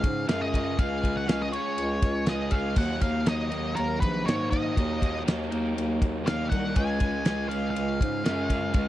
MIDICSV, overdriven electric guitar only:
0, 0, Header, 1, 2, 480
1, 0, Start_track
1, 0, Tempo, 497512
1, 756, Time_signature, 4, 2, 24, 8
1, 8568, End_track
2, 0, Start_track
2, 0, Title_t, "Overdriven electric guitar"
2, 0, Program_c, 0, 29
2, 0, Note_on_c, 0, 49, 115
2, 0, Note_on_c, 0, 56, 69
2, 0, Note_on_c, 0, 61, 52
2, 0, Note_on_c, 0, 65, 65
2, 0, Note_on_c, 0, 68, 78
2, 265, Note_off_c, 0, 49, 0
2, 265, Note_off_c, 0, 65, 0
2, 267, Note_off_c, 0, 61, 0
2, 269, Note_on_c, 0, 49, 96
2, 272, Note_off_c, 0, 56, 0
2, 272, Note_off_c, 0, 68, 0
2, 276, Note_on_c, 0, 56, 93
2, 277, Note_on_c, 0, 65, 104
2, 279, Note_on_c, 0, 61, 104
2, 284, Note_on_c, 0, 68, 107
2, 495, Note_off_c, 0, 68, 0
2, 507, Note_on_c, 0, 68, 87
2, 509, Note_off_c, 0, 65, 0
2, 517, Note_off_c, 0, 61, 0
2, 520, Note_on_c, 0, 65, 80
2, 529, Note_on_c, 0, 61, 61
2, 736, Note_off_c, 0, 49, 0
2, 744, Note_off_c, 0, 56, 0
2, 747, Note_on_c, 0, 49, 101
2, 749, Note_off_c, 0, 61, 0
2, 751, Note_off_c, 0, 65, 0
2, 756, Note_on_c, 0, 56, 96
2, 760, Note_on_c, 0, 61, 114
2, 763, Note_off_c, 0, 68, 0
2, 763, Note_on_c, 0, 65, 106
2, 775, Note_on_c, 0, 68, 116
2, 975, Note_off_c, 0, 68, 0
2, 987, Note_on_c, 0, 68, 80
2, 990, Note_off_c, 0, 65, 0
2, 995, Note_off_c, 0, 61, 0
2, 1002, Note_on_c, 0, 65, 67
2, 1006, Note_on_c, 0, 61, 56
2, 1211, Note_off_c, 0, 56, 0
2, 1220, Note_off_c, 0, 61, 0
2, 1222, Note_on_c, 0, 56, 72
2, 1226, Note_off_c, 0, 65, 0
2, 1232, Note_off_c, 0, 49, 0
2, 1232, Note_on_c, 0, 61, 81
2, 1235, Note_off_c, 0, 68, 0
2, 1238, Note_on_c, 0, 65, 70
2, 1247, Note_on_c, 0, 68, 76
2, 1453, Note_off_c, 0, 68, 0
2, 1465, Note_on_c, 0, 68, 81
2, 1466, Note_off_c, 0, 65, 0
2, 1469, Note_off_c, 0, 61, 0
2, 1478, Note_on_c, 0, 65, 69
2, 1480, Note_on_c, 0, 61, 54
2, 1710, Note_off_c, 0, 56, 0
2, 2174, Note_on_c, 0, 49, 82
2, 2181, Note_off_c, 0, 61, 0
2, 2185, Note_on_c, 0, 56, 88
2, 2188, Note_off_c, 0, 65, 0
2, 2190, Note_off_c, 0, 68, 0
2, 2193, Note_on_c, 0, 61, 92
2, 2199, Note_on_c, 0, 65, 104
2, 2202, Note_on_c, 0, 68, 102
2, 2411, Note_off_c, 0, 68, 0
2, 2420, Note_off_c, 0, 65, 0
2, 2422, Note_on_c, 0, 68, 85
2, 2431, Note_on_c, 0, 65, 71
2, 2433, Note_off_c, 0, 61, 0
2, 2445, Note_on_c, 0, 61, 71
2, 2652, Note_off_c, 0, 49, 0
2, 2656, Note_off_c, 0, 68, 0
2, 2656, Note_on_c, 0, 39, 102
2, 2657, Note_off_c, 0, 56, 0
2, 2660, Note_off_c, 0, 65, 0
2, 2660, Note_on_c, 0, 46, 97
2, 2662, Note_off_c, 0, 61, 0
2, 2662, Note_on_c, 0, 51, 111
2, 2666, Note_on_c, 0, 54, 102
2, 2675, Note_on_c, 0, 58, 97
2, 2679, Note_on_c, 0, 63, 105
2, 2895, Note_off_c, 0, 63, 0
2, 2899, Note_on_c, 0, 63, 75
2, 2908, Note_off_c, 0, 58, 0
2, 2911, Note_on_c, 0, 58, 65
2, 2914, Note_off_c, 0, 54, 0
2, 2918, Note_on_c, 0, 54, 62
2, 2920, Note_off_c, 0, 51, 0
2, 2923, Note_on_c, 0, 51, 64
2, 3135, Note_off_c, 0, 51, 0
2, 3138, Note_on_c, 0, 51, 78
2, 3144, Note_off_c, 0, 54, 0
2, 3148, Note_on_c, 0, 54, 74
2, 3149, Note_off_c, 0, 46, 0
2, 3152, Note_off_c, 0, 58, 0
2, 3156, Note_off_c, 0, 63, 0
2, 3156, Note_on_c, 0, 58, 85
2, 3160, Note_on_c, 0, 63, 82
2, 3365, Note_off_c, 0, 63, 0
2, 3368, Note_off_c, 0, 58, 0
2, 3369, Note_on_c, 0, 63, 76
2, 3372, Note_on_c, 0, 58, 74
2, 3380, Note_off_c, 0, 54, 0
2, 3382, Note_off_c, 0, 51, 0
2, 3384, Note_on_c, 0, 54, 63
2, 3386, Note_on_c, 0, 51, 57
2, 4085, Note_off_c, 0, 39, 0
2, 4089, Note_off_c, 0, 51, 0
2, 4089, Note_on_c, 0, 39, 100
2, 4092, Note_off_c, 0, 54, 0
2, 4097, Note_on_c, 0, 46, 96
2, 4098, Note_off_c, 0, 58, 0
2, 4101, Note_off_c, 0, 63, 0
2, 4101, Note_on_c, 0, 51, 101
2, 4103, Note_on_c, 0, 54, 92
2, 4110, Note_on_c, 0, 58, 102
2, 4112, Note_on_c, 0, 63, 110
2, 4330, Note_off_c, 0, 63, 0
2, 4337, Note_off_c, 0, 58, 0
2, 4339, Note_off_c, 0, 54, 0
2, 4341, Note_on_c, 0, 63, 90
2, 4349, Note_off_c, 0, 51, 0
2, 4349, Note_on_c, 0, 58, 75
2, 4350, Note_on_c, 0, 54, 68
2, 4361, Note_on_c, 0, 51, 71
2, 4566, Note_off_c, 0, 39, 0
2, 4571, Note_off_c, 0, 46, 0
2, 4577, Note_on_c, 0, 39, 99
2, 4582, Note_off_c, 0, 54, 0
2, 4583, Note_on_c, 0, 46, 119
2, 4584, Note_off_c, 0, 51, 0
2, 4588, Note_off_c, 0, 58, 0
2, 4594, Note_on_c, 0, 54, 113
2, 4595, Note_off_c, 0, 63, 0
2, 4595, Note_on_c, 0, 51, 107
2, 4600, Note_on_c, 0, 58, 104
2, 4607, Note_on_c, 0, 63, 108
2, 4817, Note_off_c, 0, 63, 0
2, 4818, Note_off_c, 0, 58, 0
2, 4828, Note_off_c, 0, 54, 0
2, 4829, Note_on_c, 0, 63, 64
2, 4830, Note_on_c, 0, 58, 69
2, 4831, Note_off_c, 0, 51, 0
2, 4840, Note_on_c, 0, 54, 69
2, 4842, Note_on_c, 0, 51, 58
2, 5064, Note_off_c, 0, 51, 0
2, 5066, Note_off_c, 0, 54, 0
2, 5068, Note_off_c, 0, 39, 0
2, 5070, Note_off_c, 0, 46, 0
2, 5076, Note_on_c, 0, 51, 67
2, 5078, Note_off_c, 0, 58, 0
2, 5078, Note_on_c, 0, 54, 75
2, 5081, Note_off_c, 0, 63, 0
2, 5090, Note_on_c, 0, 58, 82
2, 5092, Note_on_c, 0, 63, 87
2, 5303, Note_off_c, 0, 63, 0
2, 5313, Note_off_c, 0, 58, 0
2, 5314, Note_on_c, 0, 63, 81
2, 5322, Note_off_c, 0, 54, 0
2, 5325, Note_on_c, 0, 58, 78
2, 5327, Note_off_c, 0, 51, 0
2, 5334, Note_on_c, 0, 54, 73
2, 5339, Note_on_c, 0, 51, 57
2, 6019, Note_on_c, 0, 39, 107
2, 6021, Note_off_c, 0, 51, 0
2, 6022, Note_off_c, 0, 54, 0
2, 6030, Note_on_c, 0, 46, 97
2, 6033, Note_off_c, 0, 58, 0
2, 6033, Note_on_c, 0, 51, 115
2, 6033, Note_on_c, 0, 54, 115
2, 6034, Note_off_c, 0, 63, 0
2, 6044, Note_on_c, 0, 58, 112
2, 6046, Note_on_c, 0, 63, 92
2, 6259, Note_off_c, 0, 63, 0
2, 6270, Note_on_c, 0, 63, 81
2, 6272, Note_off_c, 0, 58, 0
2, 6275, Note_off_c, 0, 54, 0
2, 6282, Note_off_c, 0, 51, 0
2, 6283, Note_on_c, 0, 58, 81
2, 6287, Note_on_c, 0, 54, 65
2, 6293, Note_on_c, 0, 51, 65
2, 6493, Note_off_c, 0, 39, 0
2, 6499, Note_off_c, 0, 46, 0
2, 6499, Note_off_c, 0, 63, 0
2, 6506, Note_off_c, 0, 58, 0
2, 6507, Note_off_c, 0, 54, 0
2, 6509, Note_on_c, 0, 49, 98
2, 6511, Note_off_c, 0, 51, 0
2, 6516, Note_on_c, 0, 56, 110
2, 6516, Note_on_c, 0, 61, 110
2, 6526, Note_on_c, 0, 65, 116
2, 6531, Note_on_c, 0, 68, 115
2, 6739, Note_off_c, 0, 68, 0
2, 6743, Note_on_c, 0, 68, 81
2, 6757, Note_off_c, 0, 65, 0
2, 6761, Note_on_c, 0, 65, 65
2, 6765, Note_off_c, 0, 61, 0
2, 6769, Note_on_c, 0, 61, 65
2, 6993, Note_off_c, 0, 56, 0
2, 6996, Note_on_c, 0, 56, 78
2, 6999, Note_off_c, 0, 61, 0
2, 7003, Note_on_c, 0, 61, 87
2, 7007, Note_off_c, 0, 65, 0
2, 7009, Note_off_c, 0, 68, 0
2, 7011, Note_on_c, 0, 65, 81
2, 7013, Note_on_c, 0, 68, 91
2, 7218, Note_off_c, 0, 68, 0
2, 7222, Note_on_c, 0, 68, 80
2, 7231, Note_off_c, 0, 65, 0
2, 7235, Note_on_c, 0, 65, 66
2, 7240, Note_off_c, 0, 61, 0
2, 7244, Note_on_c, 0, 61, 64
2, 7943, Note_off_c, 0, 49, 0
2, 7945, Note_off_c, 0, 56, 0
2, 7945, Note_off_c, 0, 61, 0
2, 7947, Note_on_c, 0, 49, 95
2, 7949, Note_on_c, 0, 56, 104
2, 7954, Note_off_c, 0, 65, 0
2, 7954, Note_off_c, 0, 68, 0
2, 7956, Note_on_c, 0, 61, 112
2, 7965, Note_on_c, 0, 68, 101
2, 7966, Note_on_c, 0, 65, 105
2, 8174, Note_off_c, 0, 68, 0
2, 8186, Note_off_c, 0, 65, 0
2, 8186, Note_on_c, 0, 68, 79
2, 8188, Note_off_c, 0, 61, 0
2, 8198, Note_on_c, 0, 65, 75
2, 8199, Note_on_c, 0, 61, 63
2, 8402, Note_off_c, 0, 49, 0
2, 8413, Note_off_c, 0, 61, 0
2, 8413, Note_on_c, 0, 49, 103
2, 8415, Note_off_c, 0, 56, 0
2, 8422, Note_off_c, 0, 65, 0
2, 8424, Note_off_c, 0, 68, 0
2, 8425, Note_on_c, 0, 61, 118
2, 8427, Note_on_c, 0, 56, 96
2, 8433, Note_on_c, 0, 65, 105
2, 8436, Note_on_c, 0, 68, 112
2, 8568, Note_off_c, 0, 49, 0
2, 8568, Note_off_c, 0, 56, 0
2, 8568, Note_off_c, 0, 61, 0
2, 8568, Note_off_c, 0, 65, 0
2, 8568, Note_off_c, 0, 68, 0
2, 8568, End_track
0, 0, End_of_file